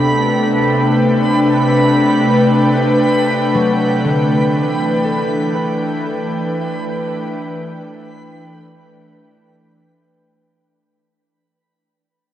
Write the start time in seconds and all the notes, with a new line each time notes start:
Already playing: C3 A3 B3 D4 A4 G5 B5
0.04 B4
3.55 F#3
4.05 D3
4.56 E3
5.04 A4
5.55 B4